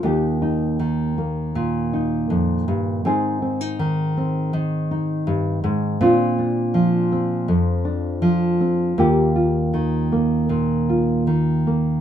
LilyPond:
\new Staff \with { instrumentName = "Nylon-string guitar" } { \time 4/4 \key ees \major \tempo 4 = 80 << { <bes ees' g'>8 ees'4 bes4 ees'4. | <c' ees' aes'>8 c'16 ees'8. c'4 ees'4. | <c' d' f'>8 d'4 c'4 d'4 c'8 | <bes f' g'>8 f'4 bes4 f'4 bes8 | } \\ { ees,4 ees4 bes,4 f,8 g,8 | aes,4 ees4 ees4 g,8 aes,8 | bes,4 f4 f,4 f4 | ees,4 ees4 bes,4 ees4 | } >> }